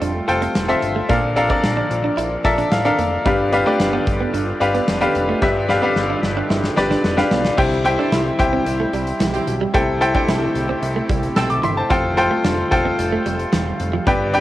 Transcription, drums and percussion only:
0.02 closed hi-hat
0.29 closed hi-hat
0.42 closed hi-hat
0.55 snare, closed hi-hat
0.69 closed hi-hat
0.82 closed hi-hat
1.09 kick, closed hi-hat
1.37 closed hi-hat
1.50 kick
1.64 snare, closed hi-hat
1.91 closed hi-hat
2.18 closed hi-hat
2.45 kick, closed hi-hat
2.58 closed hi-hat
2.72 snare, closed hi-hat
2.85 closed hi-hat
2.99 closed hi-hat
3.26 kick, closed hi-hat
3.53 closed hi-hat
3.80 snare, closed hi-hat
4.07 kick, closed hi-hat
4.34 closed hi-hat
4.61 closed hi-hat
4.75 closed hi-hat
4.88 snare, closed hi-hat
5.01 closed hi-hat
5.15 closed hi-hat
5.42 kick, snare
5.69 snare
5.96 snare
6.23 snare
6.50 snare
6.64 snare
6.77 snare
6.91 snare
7.04 snare
7.18 snare
7.31 snare
7.45 snare
7.58 kick, crash
7.85 closed hi-hat
8.12 snare, closed hi-hat, tambourine
8.39 kick, closed hi-hat
8.66 closed hi-hat
8.93 closed hi-hat
9.07 closed hi-hat
9.20 snare, closed hi-hat, tambourine
9.34 closed hi-hat
9.47 closed hi-hat
9.74 kick, closed hi-hat
10.01 closed hi-hat
10.15 kick
10.29 snare, closed hi-hat, tambourine
10.55 closed hi-hat
10.83 closed hi-hat
11.09 kick, closed hi-hat
11.23 closed hi-hat
11.36 snare, closed hi-hat, tambourine
11.50 closed hi-hat
11.63 closed hi-hat
11.91 kick, closed hi-hat
12.17 closed hi-hat
12.45 snare, closed hi-hat, tambourine
12.72 kick, closed hi-hat
12.99 closed hi-hat
13.26 closed hi-hat
13.39 closed hi-hat
13.53 snare, closed hi-hat, tambourine
13.80 closed hi-hat
14.07 kick, closed hi-hat
14.34 closed hi-hat

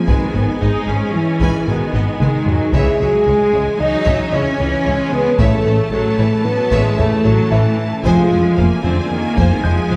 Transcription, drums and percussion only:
0.08 taiko
1.41 taiko
1.94 taiko low-mid
2.20 taiko mid
2.47 taiko low
2.73 taiko
4.06 taiko
4.33 taiko low
5.39 taiko
6.72 taiko
6.98 taiko low
8.05 taiko
9.38 taiko
9.64 taiko low

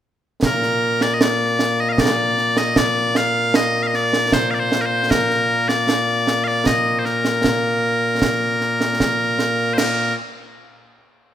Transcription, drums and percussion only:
0.42 concert bass drum, snare
0.63 snare
1.01 snare
1.21 snare
1.59 snare
1.98 concert bass drum, snare
2.38 snare
2.57 snare
2.76 concert bass drum, snare
3.15 snare
3.54 snare
3.94 snare
4.13 snare
4.32 concert bass drum, snare
4.72 snare
5.11 concert bass drum, snare
5.30 snare
5.69 snare
5.89 snare
6.27 snare
6.66 concert bass drum, snare
7.05 snare
7.25 snare
7.44 concert bass drum, snare
8.22 concert bass drum, snare
8.61 snare
8.81 snare
9.00 concert bass drum, snare
9.39 snare
9.78 snare, crash

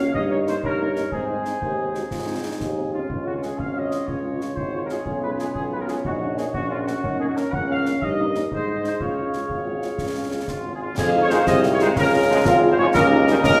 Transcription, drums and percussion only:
0.15 concert bass drum
0.47 snare
0.64 concert bass drum
0.96 snare
1.12 concert bass drum
1.45 snare
1.62 concert bass drum
1.95 snare
2.11 concert bass drum, snare
2.61 concert bass drum, snare
3.10 concert bass drum
3.43 snare
3.59 concert bass drum
3.92 snare
4.08 concert bass drum
4.41 snare
4.57 concert bass drum
4.89 snare
5.06 concert bass drum
5.39 snare
5.55 concert bass drum
5.88 snare
6.05 concert bass drum
6.38 snare
6.54 concert bass drum
6.88 snare
7.04 concert bass drum
7.37 snare
7.53 concert bass drum
7.86 snare
8.02 concert bass drum
8.35 snare
8.52 concert bass drum
8.84 snare
9.00 concert bass drum
9.33 snare
9.50 concert bass drum
9.82 snare
9.98 concert bass drum, snare
10.48 concert bass drum, snare
10.98 concert bass drum, snare, crash
11.30 snare
11.47 concert bass drum, snare
11.63 snare
11.79 snare
11.96 concert bass drum, snare
12.45 concert bass drum, snare
12.95 concert bass drum, snare, crash
13.28 snare
13.44 concert bass drum, snare

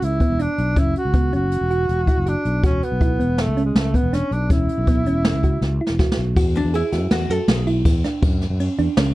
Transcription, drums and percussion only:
0.02 closed hi-hat
0.20 kick, closed hi-hat
0.39 closed hi-hat
0.58 closed hi-hat
0.76 kick, closed hi-hat
0.95 closed hi-hat
1.14 kick, closed hi-hat
1.33 closed hi-hat
1.51 closed hi-hat
1.70 closed hi-hat
1.89 closed hi-hat
2.07 kick, closed hi-hat
2.26 closed hi-hat
2.45 closed hi-hat
2.63 kick, closed hi-hat
2.83 closed hi-hat
3.01 kick, closed hi-hat
3.20 closed hi-hat
3.38 snare, closed hi-hat
3.57 closed hi-hat
3.76 snare, closed hi-hat
3.94 kick, closed hi-hat
4.13 snare, closed hi-hat
4.32 closed hi-hat
4.50 kick, closed hi-hat
4.69 closed hi-hat
4.87 kick, closed hi-hat
5.06 closed hi-hat
5.25 snare, closed hi-hat
5.43 kick, closed hi-hat
5.62 snare
5.87 snare
5.99 kick, snare
6.12 snare
6.36 kick, ride
6.55 ride
6.74 ride
6.92 snare, ride
7.11 snare, ride
7.30 ride
7.48 snare, ride
7.67 ride
7.85 kick, ride
8.04 snare, ride
8.23 kick, ride
8.41 snare, ride
8.60 ride
8.78 ride
8.97 snare, ride

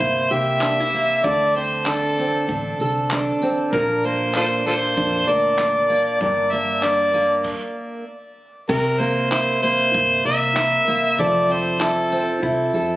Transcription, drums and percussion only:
0.00 kick
0.31 tambourine
0.61 clap
0.93 tambourine
1.24 kick
1.55 tambourine
1.86 clap
2.18 tambourine
2.49 kick
2.80 tambourine
3.11 clap
3.42 tambourine
3.73 kick
4.04 tambourine
4.34 clap
4.67 tambourine
4.97 kick
5.28 tambourine
5.59 clap
5.90 tambourine
6.21 kick
6.52 tambourine
6.83 clap
7.14 tambourine
7.44 kick, crash
8.69 kick, crash
9.01 tambourine
9.32 clap
9.63 tambourine
9.94 kick
10.25 tambourine
10.57 clap
10.88 tambourine
11.19 kick
11.50 tambourine
11.81 clap
12.12 tambourine
12.43 kick
12.74 tambourine

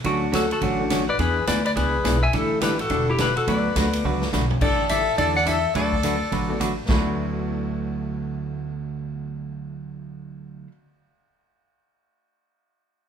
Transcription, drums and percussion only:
0.04 kick, ride
0.33 kick, snare, hi-hat pedal, ride
0.51 ride
0.61 kick, ride
0.90 kick, snare, hi-hat pedal, ride
1.19 kick, ride
1.47 kick, snare, hi-hat pedal, ride
1.65 ride
1.76 kick, ride
2.04 kick, snare, hi-hat pedal, ride
2.33 kick, ride
2.61 kick, snare, hi-hat pedal, ride
2.79 ride
2.90 kick, ride
3.18 kick, snare, hi-hat pedal, ride
3.37 ride
3.47 kick, ride
3.76 kick, snare, hi-hat pedal, ride
3.93 ride
4.22 snare
4.33 snare, hi-hat pedal
4.50 floor tom
4.61 kick, crash
4.89 kick, hi-hat pedal, ride
5.18 kick, ride
5.46 kick, hi-hat pedal, ride
5.75 kick, ride
5.92 kick
6.03 kick, hi-hat pedal, ride
6.32 kick, ride
6.60 kick, hi-hat pedal, ride
6.88 kick, snare

